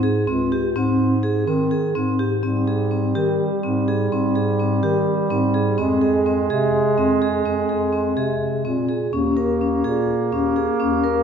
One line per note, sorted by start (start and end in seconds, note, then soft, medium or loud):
0.00 0.25 G#2 medium
0.00 0.21 G#4 medium
0.27 0.72 C#2 medium
0.27 0.45 C4 medium
0.52 0.69 G4 medium
0.76 1.43 G#2 medium
0.76 1.11 C4 medium
1.23 1.41 G#4 medium
1.47 1.92 D#3 medium
1.47 1.65 C4 medium
1.71 1.89 G#4 medium
1.95 2.41 G#2 medium
1.95 2.13 C4 medium
2.19 2.37 G4 soft
2.43 3.12 G#2 medium
2.43 5.81 G3 medium
2.43 2.61 C4 medium
2.68 2.86 G#4 soft
2.91 3.09 C4 soft
3.15 3.50 D#3 medium
3.15 3.51 G4 medium
3.63 4.09 G#2 medium
3.63 3.82 C4 medium
3.88 4.06 G#4 medium
4.11 4.79 G#2 medium
4.11 4.30 C4 medium
4.35 4.54 G#4 soft
4.59 4.77 C4 soft
4.83 5.28 D#3 medium
4.83 5.19 G4 medium
5.30 5.76 G#2 medium
5.30 5.48 C4 medium
5.54 5.72 G#4 medium
5.78 6.47 F2 medium
5.78 8.89 G#3 medium
5.78 5.96 C4 medium
6.01 6.20 G#4 soft
6.26 6.44 C4 medium
6.50 6.95 C3 medium
6.50 6.86 G#4 medium
6.98 7.43 F2 medium
6.98 7.15 C4 medium
7.22 7.39 G#4 medium
7.45 8.13 F2 medium
7.45 7.63 C4 medium
7.69 7.87 G#4 soft
7.93 8.11 C4 soft
8.17 8.62 C3 medium
8.17 8.53 G#4 medium
8.65 9.11 A#2 medium
8.65 8.83 C4 medium
8.89 9.07 G#4 soft
9.13 9.81 D#2 medium
9.13 11.23 A#3 medium
9.13 9.31 C#4 medium
9.37 9.55 A#4 soft
9.61 9.79 C#4 soft
9.84 10.30 A#2 medium
9.84 10.20 G#4 medium
10.32 10.67 D#2 medium
10.32 10.50 C#4 medium
10.56 10.74 G#4 soft
10.80 11.23 D#2 medium
10.80 10.98 C#4 medium
11.04 11.22 A#4 medium